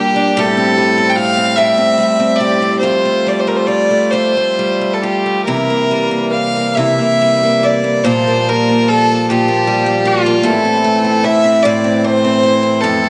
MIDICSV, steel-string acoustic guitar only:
0, 0, Header, 1, 2, 480
1, 0, Start_track
1, 0, Tempo, 814111
1, 225, Time_signature, 6, 3, 24, 8
1, 1668, Tempo, 882353
1, 3108, Tempo, 858369
1, 4548, Tempo, 828729
1, 5028, Tempo, 794702
1, 7571, End_track
2, 0, Start_track
2, 0, Title_t, "Steel-string acoustic guitar"
2, 0, Program_c, 0, 25
2, 0, Note_on_c, 0, 55, 62
2, 0, Note_on_c, 0, 58, 81
2, 0, Note_on_c, 0, 62, 57
2, 0, Note_on_c, 0, 67, 70
2, 87, Note_off_c, 0, 62, 0
2, 94, Note_on_c, 0, 62, 62
2, 217, Note_on_c, 0, 45, 93
2, 225, Note_off_c, 0, 67, 0
2, 227, Note_on_c, 0, 67, 78
2, 267, Note_off_c, 0, 62, 0
2, 268, Note_off_c, 0, 58, 0
2, 336, Note_on_c, 0, 60, 60
2, 457, Note_off_c, 0, 55, 0
2, 459, Note_on_c, 0, 55, 52
2, 574, Note_off_c, 0, 60, 0
2, 577, Note_on_c, 0, 60, 59
2, 692, Note_off_c, 0, 67, 0
2, 694, Note_on_c, 0, 67, 51
2, 807, Note_off_c, 0, 60, 0
2, 809, Note_on_c, 0, 60, 57
2, 924, Note_off_c, 0, 45, 0
2, 929, Note_off_c, 0, 67, 0
2, 931, Note_on_c, 0, 45, 73
2, 932, Note_on_c, 0, 67, 51
2, 1045, Note_off_c, 0, 60, 0
2, 1047, Note_on_c, 0, 60, 51
2, 1163, Note_off_c, 0, 55, 0
2, 1166, Note_on_c, 0, 55, 55
2, 1292, Note_off_c, 0, 60, 0
2, 1295, Note_on_c, 0, 60, 54
2, 1416, Note_off_c, 0, 67, 0
2, 1418, Note_on_c, 0, 67, 66
2, 1544, Note_off_c, 0, 60, 0
2, 1546, Note_on_c, 0, 60, 56
2, 1666, Note_off_c, 0, 45, 0
2, 1668, Note_on_c, 0, 41, 74
2, 1669, Note_off_c, 0, 67, 0
2, 1671, Note_on_c, 0, 65, 58
2, 1788, Note_off_c, 0, 60, 0
2, 1790, Note_on_c, 0, 57, 48
2, 1806, Note_off_c, 0, 55, 0
2, 1905, Note_on_c, 0, 55, 43
2, 2011, Note_off_c, 0, 57, 0
2, 2018, Note_on_c, 0, 57, 45
2, 2125, Note_off_c, 0, 65, 0
2, 2132, Note_on_c, 0, 65, 42
2, 2248, Note_off_c, 0, 57, 0
2, 2254, Note_on_c, 0, 57, 45
2, 2367, Note_off_c, 0, 41, 0
2, 2372, Note_off_c, 0, 65, 0
2, 2373, Note_on_c, 0, 41, 64
2, 2379, Note_on_c, 0, 65, 57
2, 2499, Note_off_c, 0, 57, 0
2, 2506, Note_on_c, 0, 57, 46
2, 2623, Note_off_c, 0, 55, 0
2, 2625, Note_on_c, 0, 55, 49
2, 2741, Note_off_c, 0, 57, 0
2, 2747, Note_on_c, 0, 57, 47
2, 2861, Note_off_c, 0, 65, 0
2, 2867, Note_on_c, 0, 65, 55
2, 2983, Note_off_c, 0, 57, 0
2, 2990, Note_on_c, 0, 57, 47
2, 3104, Note_off_c, 0, 65, 0
2, 3106, Note_on_c, 0, 64, 61
2, 3109, Note_on_c, 0, 48, 75
2, 3149, Note_off_c, 0, 41, 0
2, 3156, Note_off_c, 0, 57, 0
2, 3234, Note_on_c, 0, 58, 48
2, 3349, Note_off_c, 0, 55, 0
2, 3351, Note_on_c, 0, 55, 43
2, 3461, Note_off_c, 0, 58, 0
2, 3464, Note_on_c, 0, 58, 51
2, 3588, Note_off_c, 0, 64, 0
2, 3714, Note_off_c, 0, 58, 0
2, 3716, Note_on_c, 0, 58, 46
2, 3825, Note_off_c, 0, 48, 0
2, 3832, Note_on_c, 0, 48, 73
2, 3843, Note_on_c, 0, 64, 60
2, 3952, Note_off_c, 0, 58, 0
2, 3954, Note_on_c, 0, 58, 45
2, 4079, Note_off_c, 0, 55, 0
2, 4081, Note_on_c, 0, 55, 55
2, 4200, Note_off_c, 0, 58, 0
2, 4202, Note_on_c, 0, 58, 54
2, 4306, Note_off_c, 0, 64, 0
2, 4312, Note_on_c, 0, 64, 64
2, 4427, Note_off_c, 0, 58, 0
2, 4429, Note_on_c, 0, 58, 52
2, 4542, Note_off_c, 0, 48, 0
2, 4544, Note_on_c, 0, 46, 75
2, 4550, Note_off_c, 0, 64, 0
2, 4553, Note_on_c, 0, 65, 68
2, 4674, Note_off_c, 0, 58, 0
2, 4677, Note_on_c, 0, 58, 52
2, 4799, Note_off_c, 0, 55, 0
2, 4801, Note_on_c, 0, 55, 49
2, 4912, Note_off_c, 0, 58, 0
2, 4919, Note_on_c, 0, 58, 51
2, 5031, Note_off_c, 0, 65, 0
2, 5040, Note_on_c, 0, 65, 54
2, 5153, Note_off_c, 0, 58, 0
2, 5169, Note_on_c, 0, 58, 49
2, 5266, Note_off_c, 0, 46, 0
2, 5274, Note_off_c, 0, 65, 0
2, 5281, Note_on_c, 0, 46, 74
2, 5288, Note_on_c, 0, 65, 63
2, 5385, Note_off_c, 0, 58, 0
2, 5392, Note_on_c, 0, 58, 48
2, 5500, Note_off_c, 0, 55, 0
2, 5507, Note_on_c, 0, 55, 51
2, 5614, Note_off_c, 0, 58, 0
2, 5621, Note_on_c, 0, 58, 62
2, 5730, Note_off_c, 0, 65, 0
2, 5737, Note_on_c, 0, 65, 74
2, 5855, Note_off_c, 0, 58, 0
2, 5863, Note_on_c, 0, 58, 64
2, 5964, Note_off_c, 0, 46, 0
2, 5967, Note_on_c, 0, 45, 83
2, 5970, Note_off_c, 0, 65, 0
2, 5972, Note_on_c, 0, 64, 74
2, 6030, Note_off_c, 0, 58, 0
2, 6031, Note_off_c, 0, 55, 0
2, 6097, Note_on_c, 0, 60, 49
2, 6214, Note_on_c, 0, 57, 53
2, 6334, Note_off_c, 0, 60, 0
2, 6336, Note_on_c, 0, 60, 51
2, 6451, Note_off_c, 0, 64, 0
2, 6453, Note_on_c, 0, 64, 56
2, 6573, Note_off_c, 0, 60, 0
2, 6575, Note_on_c, 0, 60, 51
2, 6691, Note_off_c, 0, 45, 0
2, 6702, Note_off_c, 0, 64, 0
2, 6702, Note_on_c, 0, 45, 79
2, 6705, Note_on_c, 0, 64, 63
2, 6815, Note_off_c, 0, 60, 0
2, 6817, Note_on_c, 0, 60, 55
2, 6937, Note_off_c, 0, 57, 0
2, 6940, Note_on_c, 0, 57, 54
2, 7058, Note_off_c, 0, 60, 0
2, 7060, Note_on_c, 0, 60, 56
2, 7170, Note_off_c, 0, 64, 0
2, 7173, Note_on_c, 0, 64, 57
2, 7290, Note_off_c, 0, 60, 0
2, 7292, Note_on_c, 0, 60, 54
2, 7417, Note_off_c, 0, 64, 0
2, 7417, Note_on_c, 0, 41, 77
2, 7420, Note_on_c, 0, 64, 54
2, 7425, Note_off_c, 0, 45, 0
2, 7538, Note_off_c, 0, 60, 0
2, 7540, Note_on_c, 0, 60, 48
2, 7571, Note_off_c, 0, 41, 0
2, 7571, Note_off_c, 0, 57, 0
2, 7571, Note_off_c, 0, 60, 0
2, 7571, Note_off_c, 0, 64, 0
2, 7571, End_track
0, 0, End_of_file